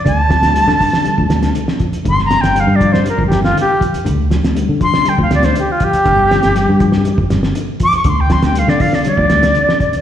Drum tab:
HH |x-xxx-o-x-xxx-xx|x-xxx-x-x-x-x-xx|x-xxx-x-x-xxx-xx|x-xxx-x-x-x-x-xx|
SD |--oo-o-o--oo-o--|-ooo---o--ooo---|--oo---o--oo----|--ooo--o--oo----|
BD |o-o---o--o----o-|o-----o--o----o-|o-----o--o----o-|o-----o--o----o-|

HH |x-xxx-o-x-xxx-xx|
SD |--oo-o-o--oo-o--|
BD |o-o---o--o----o-|